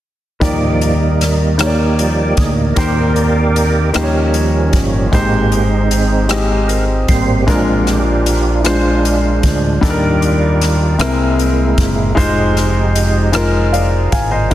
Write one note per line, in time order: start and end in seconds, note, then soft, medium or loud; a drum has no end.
0.40 2.34 D#2 medium
0.40 1.55 D#3 soft
0.40 0.94 F3 soft
0.40 1.56 G3 soft
0.40 1.46 A#3 medium
0.40 5.09 A#3 medium
0.40 1.56 A#3 soft
0.40 1.46 D#4 medium
0.40 1.56 D#4 medium
0.40 1.46 G4 medium
0.40 1.47 D5 medium
0.40 2.75 D5 medium
0.40 0.95 D5 soft
0.40 kick medium
0.40 closed hi-hat medium
0.81 closed hi-hat soft
1.21 cross-stick soft
1.21 closed hi-hat medium
1.58 2.63 A#3 medium
1.58 2.74 A#3 medium
1.58 2.63 D#4 soft
1.58 2.74 D#4 medium
1.58 2.39 G4 medium
1.58 2.64 G4 soft
1.58 1.66 C#5 soft
1.58 cross-stick medium
1.58 closed hi-hat medium
1.67 2.68 D5 medium
1.99 2.34 F3 soft
1.99 2.34 G3 soft
1.99 2.35 D5 soft
1.99 closed hi-hat soft
2.35 2.74 D2 medium
2.35 2.53 G#4 medium
2.35 kick medium
2.35 closed hi-hat medium
2.74 3.90 D#3 soft
2.74 3.91 D#3 soft
2.74 3.81 A#3 medium
2.74 3.90 A#3 soft
2.74 3.81 D#4 medium
2.74 3.82 G4 medium
2.74 4.30 G4 medium
2.74 4.28 A#4 medium
2.74 3.91 D5 soft
2.74 kick medium
2.74 closed hi-hat medium
2.78 3.94 C4 medium
2.78 3.82 C5 medium
3.16 closed hi-hat soft
3.56 closed hi-hat medium
3.94 4.69 D#2 medium
3.94 5.08 D#3 medium
3.94 5.08 F3 soft
3.94 5.09 G3 soft
3.94 4.99 A#3 medium
3.94 5.11 C#4 medium
3.94 5.09 C#4 soft
3.94 4.99 D#4 medium
3.94 5.00 G4 medium
3.94 4.02 C5 medium
3.94 cross-stick medium
3.94 closed hi-hat medium
4.03 5.03 C#5 medium
4.34 closed hi-hat soft
4.73 5.09 G1 medium
4.73 kick medium
4.73 closed hi-hat medium
5.06 5.13 F4 soft
5.12 7.05 G#1 medium
5.12 6.26 G#2 medium
5.12 6.17 G#3 medium
5.12 6.26 G#3 soft
5.12 5.64 A#3 soft
5.12 7.45 C4 medium
5.12 6.26 C4 soft
5.12 6.33 D#4 medium
5.12 6.17 D#4 medium
5.12 5.64 G4 soft
5.12 6.17 G4 medium
5.12 6.18 C5 medium
5.12 kick medium
5.12 closed hi-hat medium
5.52 closed hi-hat soft
5.91 closed hi-hat medium
6.28 7.34 G#3 medium
6.28 7.34 D#4 soft
6.28 6.69 G4 medium
6.28 7.35 G4 soft
6.28 7.35 D#5 medium
6.28 cross-stick medium
6.28 closed hi-hat medium
6.68 6.86 A#4 medium
6.68 closed hi-hat soft
7.08 7.45 G#1 medium
7.08 7.44 G3 soft
7.08 7.44 A#3 soft
7.08 7.45 C4 soft
7.08 7.41 C5 medium
7.08 kick medium
7.08 closed hi-hat medium
7.42 7.48 G4 medium
7.47 9.40 A#1 medium
7.47 8.61 A#2 medium
7.47 9.80 F3 medium
7.47 8.51 G#3 medium
7.47 8.00 G#3 soft
7.47 12.13 A#3 medium
7.47 8.00 C4 soft
7.47 8.52 D4 medium
7.47 7.89 D4 medium
7.47 8.52 F4 medium
7.47 8.62 F4 medium
7.47 7.62 G#4 medium
7.47 8.52 A#4 medium
7.47 10.96 D5 medium
7.47 kick medium
7.47 closed hi-hat medium
7.82 7.88 F#4 medium
7.87 8.65 D4 medium
7.87 8.55 G4 medium
7.87 cross-stick soft
7.87 closed hi-hat soft
8.26 closed hi-hat medium
8.60 8.66 E4 soft
8.64 9.69 G#3 medium
8.64 9.79 G#3 soft
8.64 9.69 D4 soft
8.64 9.79 D4 soft
8.64 9.49 F4 medium
8.64 9.69 F4 medium
8.64 9.70 C5 medium
8.64 cross-stick medium
8.64 closed hi-hat medium
9.05 closed hi-hat soft
9.43 9.79 D2 medium
9.43 kick medium
9.43 closed hi-hat medium
9.81 10.98 D#3 medium
9.81 10.96 D#3 medium
9.81 10.86 G3 medium
9.81 10.98 G3 soft
9.81 10.96 G3 soft
9.81 10.87 D4 medium
9.81 10.87 D#4 medium
9.81 10.97 F4 soft
9.81 9.89 A4 medium
9.81 10.96 D5 soft
9.81 kick medium
9.81 closed hi-hat medium
9.90 10.91 A#4 medium
10.22 closed hi-hat soft
10.62 cross-stick soft
10.62 closed hi-hat medium
10.98 11.74 C2 medium
10.98 12.13 C3 medium
10.98 12.16 E3 medium
10.98 12.03 G#3 medium
10.98 12.13 G#3 soft
10.98 12.13 A#3 soft
10.98 14.48 C4 medium
10.98 12.04 C4 medium
10.98 12.04 E4 medium
10.98 12.13 E4 soft
10.98 12.05 A#4 medium
10.98 cross-stick medium
10.98 closed hi-hat medium
11.39 closed hi-hat soft
11.78 12.14 F#1 medium
11.78 kick medium
11.78 closed hi-hat medium
12.15 14.09 F1 medium
12.15 14.54 F3 medium
12.15 13.20 G#3 medium
12.15 13.31 G#3 soft
12.15 13.21 D#4 medium
12.15 14.50 D#4 medium
12.15 13.31 D#4 soft
12.15 13.21 F4 medium
12.15 13.30 G4 soft
12.15 13.22 C5 medium
12.15 kick medium
12.15 closed hi-hat medium
12.57 cross-stick soft
12.57 closed hi-hat soft
12.96 closed hi-hat medium
13.32 14.38 G#3 medium
13.32 14.38 D#4 medium
13.32 14.38 F4 medium
13.32 14.39 A#4 medium
13.32 cross-stick medium
13.32 closed hi-hat medium
13.73 14.11 D5 soft
13.73 14.10 F5 medium
13.73 closed hi-hat soft
14.12 14.48 G#1 medium
14.12 14.31 F5 soft
14.12 14.31 G#5 medium
14.12 kick medium
14.12 closed hi-hat medium
14.31 14.54 C5 soft
14.31 14.54 D#5 medium
14.50 14.54 A#1 medium
14.50 14.54 G#3 medium
14.50 14.54 D4 medium